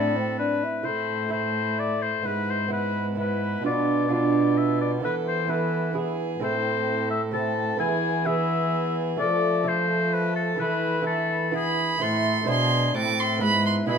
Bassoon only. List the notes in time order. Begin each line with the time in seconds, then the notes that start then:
Already playing: D4
0.16 C4
0.39 D4
0.64 E4
0.87 A3
1.33 A3
2.25 B3
2.72 B3
3.18 B3
3.65 B3
4.11 B3
5.03 B3
5.51 B3
5.97 B3
6.43 C4
7.34 C4
7.79 B3
8.27 B3
9.19 A3
9.67 A3
10.60 A3
11.06 A3
11.54 B3
12.02 E4
12.47 D4
12.95 C4
13.42 E4